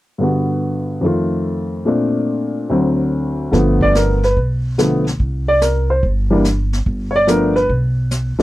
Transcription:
0.18 grand piano G2 D3 B3
0.23 grand piano F#4
1.01 grand piano F2 D#3 A3
1.06 grand piano F4
1.85 grand piano A#2 A3 C4 D4
2.70 grand piano D2 D3 F#3 C4
3.51 upright bass G1, grand piano D3 F3 A3 B3, brush sweep, kick, snare
3.81 grand piano D5, kick
3.95 grand piano A#4, snare, hi-hat pedal
4.23 grand piano B4, snare
4.37 upright bass B1, brush sweep, kick
4.78 grand piano D3 F3 A3 B3, snare, hi-hat pedal
5.06 snare
5.20 upright bass C2, brush sweep, kick
5.48 grand piano D5
5.61 grand piano A#4, snare, hi-hat pedal
5.90 grand piano C5
6.03 upright bass G1, brush sweep, kick
6.31 grand piano E3 G3 A#3 D4
6.44 snare, hi-hat pedal
6.73 snare
6.86 upright bass G1, brush sweep, kick
7.11 grand piano C#5
7.16 grand piano D5
7.27 grand piano F3 A3 B3 D4 A#4, snare, hi-hat pedal
7.56 grand piano B4, snare
7.69 upright bass B1, brush sweep, kick
8.11 snare, hi-hat pedal
8.39 grand piano F3 A3, muted upright bass stroke, snare

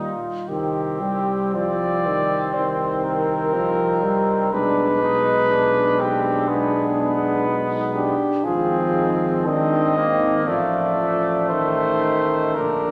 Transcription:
Already playing: bass trombone D#2, trombone A#2, french horn G3, trumpet D#4
0.00 cornet F4
0.49 bass trombone C2, french horn D#3, trumpet C4, cornet G4
1.01 french horn G3
1.54 french horn F3, cornet D5
2.06 french horn D#3
2.54 french horn D#3, trombone C4, cornet C5
3.05 cornet A#4
3.53 french horn F3, trombone D#4
4.04 french horn G3
4.52 bass trombone B1, french horn G#3, trombone D4, trumpet D4, cornet B4
5.02 trombone D#4, trumpet D#4
5.50 trombone D4, trumpet D4
5.99 trumpet C4, trombone D4, cornet G4
6.48 french horn G#3, trumpet B3, cornet G#4
6.98 trumpet B3
7.47 trombone D#4
7.95 trombone D4, cornet G4
8.44 bass trombone G#1, french horn F3, trumpet C4, trombone F4, cornet G#4
8.95 trombone D#4
9.46 french horn D#3, trumpet C4, trombone D4, cornet D#5
9.96 trumpet A#3, trombone C4
10.47 bass trombone A1, french horn F3, trumpet A3, trombone F4, cornet D5
10.97 french horn F3
11.49 french horn D#3, trombone D#4, cornet C5
12.55 bass trombone A#1, french horn D3, trombone D4, trumpet D4, cornet A#4

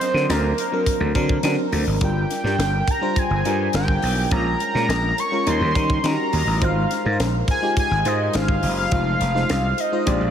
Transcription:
Already playing: fm electric piano F#3 C4 D4 A#4, analog synth lead C5
0.01 snare, closed hi-hat
0.14 slap bass D3, fm electric piano F#3 C4 D4 A#4, snare
0.29 slap bass D2, analog synth lead A#4, snare, closed hi-hat
0.58 closed hi-hat
0.72 fm electric piano F#3 C4 D4 A#4
0.86 kick, closed hi-hat
1.00 slap bass D2
1.15 slap bass D3, fm electric piano F#3 C4 D4 A#4, kick, closed hi-hat
1.29 kick
1.43 slap bass D3, fm electric piano F#3 C4 D4 A#4, snare, closed hi-hat
1.72 slap bass D2, open hi-hat
1.87 slap bass G#1
2.01 slap bass G1, fm electric piano G3 D4 F4 A#4, analog synth lead G5, kick, closed hi-hat
2.31 snare, closed hi-hat
2.44 slap bass G2, fm electric piano G3 D4 F4 A#4, snare
2.58 slap bass G1, snare, closed hi-hat
2.88 analog synth lead A#5, kick, closed hi-hat
3.01 fm electric piano G3 D4 F4 C5
3.16 analog synth lead G#5, kick, closed hi-hat
3.30 slap bass G1
3.45 slap bass G2, fm electric piano G3 D4 F4 A#4, closed hi-hat
3.73 slap bass G1, fm electric piano G3 D4 F4 A#4, analog synth lead G5, snare, closed hi-hat
3.88 kick
4.02 slap bass B1, open hi-hat
4.31 slap bass A#1, fm electric piano G#3 C#4 F4 A#4, analog synth lead A#5, kick, closed hi-hat
4.60 closed hi-hat
4.74 slap bass A#2, fm electric piano G#3 C#4 F4 A#4, snare
4.88 slap bass A#1, snare, closed hi-hat
5.18 analog synth lead C#6, closed hi-hat
5.32 fm electric piano G#3 C#4 F4 A#4
5.46 slap bass D#2, fm electric piano G3 C#4 D#4 A#4, analog synth lead C6, closed hi-hat
5.61 slap bass D#2
5.75 slap bass D#3, fm electric piano G3 C#4 D#4 A#4, kick, closed hi-hat
5.90 kick
6.04 slap bass D#3, fm electric piano G3 C#4 D#4 F#4, analog synth lead A#5, snare, closed hi-hat
6.12 fm electric piano G4
6.33 slap bass D#2, open hi-hat
6.47 slap bass A1
6.61 slap bass G#1, fm electric piano G#3 D#4 F4 C5, analog synth lead F5, kick, closed hi-hat
6.91 snare, closed hi-hat
7.05 slap bass G#2, fm electric piano G#3 D#4 F4 A#4
7.12 fm electric piano C5
7.19 slap bass A#1, snare, closed hi-hat
7.48 analog synth lead G#5, kick, closed hi-hat
7.62 fm electric piano G#3 D#4 F4 G4
7.77 analog synth lead G#5, kick, closed hi-hat
7.91 slap bass G#1
8.05 slap bass G#2, fm electric piano G#3 D#4 F4 C5, analog synth lead D#5, closed hi-hat
8.33 slap bass G#1, fm electric piano G#3 D#4 F4 C5, analog synth lead F5, snare, closed hi-hat
8.48 kick
8.63 slap bass F#1, open hi-hat
8.79 analog synth lead F5
8.91 slap bass F1, fm electric piano G#3 D#4 F4 C5, analog synth lead F5, kick, closed hi-hat
9.21 slap bass F1, snare, closed hi-hat
9.34 fm electric piano G#3 D#4 F4 C5, snare
9.50 slap bass C2, snare, closed hi-hat
9.78 analog synth lead D#5, closed hi-hat
9.92 fm electric piano G#3 D#4 F4 C5
10.06 slap bass A#1, fm electric piano G#3 D4 G4 C5, analog synth lead D5, kick, closed hi-hat
10.21 slap bass A#1

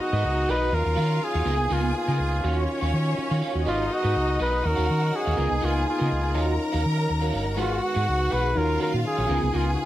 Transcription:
Already playing: french horn section D#3 G#3 B3 F#4, string section D#4 D#5
0.00 flugelhorn F#4, muted clean electric guitar stroke
0.13 fingered electric bass G#2, clean electric guitar F#4 B4 D#5
0.25 fingered electric bass C#2, muted clean electric guitar stroke
0.37 muted clean electric guitar stroke
0.48 fingered electric bass B1, clean electric guitar F#4 B4 D#5, flugelhorn B4
0.61 muted clean electric guitar stroke
0.72 fingered electric bass D#2, french horn section D#3 F#3 C#4 F4, string section F4 F5, flugelhorn A#4, muted clean electric guitar stroke
0.85 fingered electric bass D#2, muted clean electric guitar stroke
0.96 fingered electric bass D#3, clean electric guitar F#4 C#5 F5
1.09 muted clean electric guitar stroke
1.21 flugelhorn G#4, muted clean electric guitar stroke
1.34 fingered electric bass D#2, clean electric guitar F#4 C#5 F5
1.45 fingered electric bass C#2, french horn section A#3 B3 F4, clean electric guitar B3 F4 A#4, string section G#4 G#5
1.58 fingered electric bass C2, muted clean electric guitar stroke
1.70 fingered electric bass C#2, clean electric guitar B3 F4 A#4, flugelhorn F4
1.83 muted clean electric guitar stroke
1.94 flugelhorn F4, muted clean electric guitar stroke
2.08 fingered electric bass C#3, clean electric guitar B3 F4 A#4
2.19 fingered electric bass C#2, muted clean electric guitar stroke
2.32 muted clean electric guitar stroke
2.43 fingered electric bass D#2, french horn section F#3 C#4, string section C#4 C#5, clean electric guitar F#4 C#5 F5
2.57 muted clean electric guitar stroke
2.69 muted clean electric guitar stroke
2.81 fingered electric bass D#2, clean electric guitar F#4 C#5 F5
2.93 fingered electric bass D#3, muted clean electric guitar stroke
3.06 muted clean electric guitar stroke
3.18 muted clean electric guitar stroke, muted fingered electric bass stroke
3.30 fingered electric bass D#3, clean electric guitar F#4 C#5 F5
3.41 clean electric guitar F#4 C#5 F5
3.55 fingered electric bass D#2, muted clean electric guitar stroke
3.66 fingered electric bass G#1, french horn section G#3 B3 F#4, string section D#4 D#5, flugelhorn F4, clean electric guitar F#4 B4 D#5
3.79 muted clean electric guitar stroke
3.90 flugelhorn F#4, muted clean electric guitar stroke
4.03 fingered electric bass G#2, clean electric guitar F#4 B4 D#5
4.15 fingered electric bass C#2, muted clean electric guitar stroke
4.28 muted clean electric guitar stroke
4.39 fingered electric bass B1, clean electric guitar F#4 B4 D#5, flugelhorn B4
4.52 muted clean electric guitar stroke
4.64 fingered electric bass D#2, french horn section D#3 F#3 C#4 D#4, string section F#4 F#5, flugelhorn A#4, muted clean electric guitar stroke
4.77 fingered electric bass D#2, clean electric guitar F#4 C#5 F5
4.88 fingered electric bass D#3, muted clean electric guitar stroke
5.01 muted clean electric guitar stroke
5.12 flugelhorn G#4, muted clean electric guitar stroke
5.25 fingered electric bass D#2, clean electric guitar F#4 C#5 F5
5.36 fingered electric bass C#2, french horn section A#3 B3, clean electric guitar B3 F4 A#4, string section G#4 G#5
5.50 fingered electric bass C2, muted clean electric guitar stroke
5.61 fingered electric bass C#2, clean electric guitar B3 F4 A#4, flugelhorn F4
5.74 muted clean electric guitar stroke
5.86 muted clean electric guitar stroke
5.90 flugelhorn F4
5.98 fingered electric bass C#3, clean electric guitar B3 F4 A#4
6.10 fingered electric bass C#2, muted clean electric guitar stroke
6.23 muted clean electric guitar stroke
6.34 fingered electric bass D#2, french horn section D#3 F#3 C#4, clean electric guitar F#4 C#5 F5, string section A#4 A#5
6.47 muted clean electric guitar stroke
6.59 muted clean electric guitar stroke
6.72 fingered electric bass D#2, clean electric guitar F#4 C#5 F5
6.83 fingered electric bass D#3, muted clean electric guitar stroke
6.97 muted clean electric guitar stroke
7.09 fingered electric bass D#2, muted clean electric guitar stroke
7.21 clean electric guitar F#4 C#5 F5
7.32 fingered electric bass G1, clean electric guitar F#4 C#5 F5
7.46 muted clean electric guitar stroke
7.57 fingered electric bass G#1, tine electric piano G#3 D#4 F#4 A#4 B4, french horn section G#3 B3 F#4, flugelhorn F4, string section F#4 F#5, clean electric guitar G#4 B4 F#5
7.70 muted clean electric guitar stroke
7.82 flugelhorn F#4, muted clean electric guitar stroke
7.94 fingered electric bass G#2, clean electric guitar G#4 B4 F#5
8.06 fingered electric bass C#2, muted clean electric guitar stroke
8.19 muted clean electric guitar stroke
8.30 fingered electric bass B1, clean electric guitar G#4 B4 F#5, flugelhorn B4
8.44 muted clean electric guitar stroke
8.55 fingered electric bass D#2, tine electric piano D#3 D#4 F4 F#4 C#5, french horn section F#3 C#4 F5, string section F4 F5, flugelhorn A#4
8.68 muted clean electric guitar stroke
8.80 clean electric guitar F#4 C#5 F5, flugelhorn A#4
8.93 fingered electric bass A#2, muted clean electric guitar stroke
9.04 flugelhorn G#4, muted clean electric guitar stroke
9.17 fingered electric bass A#1, clean electric guitar F#4 C#5 F5
9.28 fingered electric bass C#2, tine electric piano C#3 C#4 D#4 F4 A#4 B4, french horn section G#3 B3 F4, clean electric guitar B3 F4 A#4, string section G#4 G#5
9.42 fingered electric bass C2, muted clean electric guitar stroke
9.53 fingered electric bass C#2, clean electric guitar B3 F4 A#4, flugelhorn F4
9.66 muted clean electric guitar stroke
9.74 flugelhorn F#4
9.78 flugelhorn F4, muted clean electric guitar stroke

